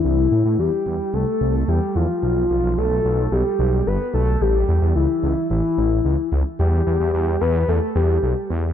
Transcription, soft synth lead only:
X:1
M:4/4
L:1/8
Q:1/4=110
K:Ephr
V:1 name="Soft synth lead"
E2 G2 A2 G F | F2 A2 G2 B A | G2 E2 E3 z | G3 B A G2 z |]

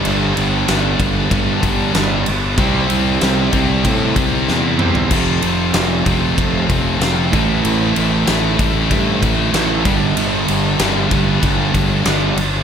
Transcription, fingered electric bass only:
X:1
M:4/4
L:1/8
Q:1/4=95
K:Gmix
V:1 name="Fingered electric bass" clef=bass
G,,, G,,, G,,, G,,, G,,, G,,, G,,, G,,, | C,, C,, C,, C,, A,, C,, E,,2 | F,,, F,,, F,,, F,,, F,,, F,,, F,,, A,,, | A,,, A,,, A,,, A,,, G,, A,,, A,,, G,,, |
G,,, G,,, G,,, G,,, G,,, G,,, G,,, G,,, |]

